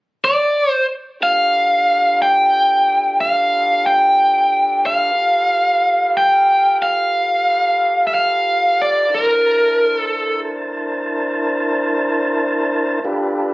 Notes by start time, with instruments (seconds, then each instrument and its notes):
0.24 lead electric guitar D5
0.70 lead electric guitar C5
1.20 tonewheel organ D4 F4 G4 A4 B4, lead electric guitar F5
2.22 lead electric guitar G5
3.21 lead electric guitar F5
3.86 lead electric guitar G5
4.86 lead electric guitar F5
5.15 tonewheel organ F4 G4 A4 B4 F5
6.17 lead electric guitar G5
6.82 lead electric guitar F5
8.07 lead electric guitar E5
8.14 lead electric guitar F5
8.82 lead electric guitar D5
9.08 tonewheel organ D4 E4 A#4 C5 A5
9.14 lead electric guitar A#4
9.96 lead electric guitar A4
13.04 tonewheel organ D4 F4 G4 A4 B4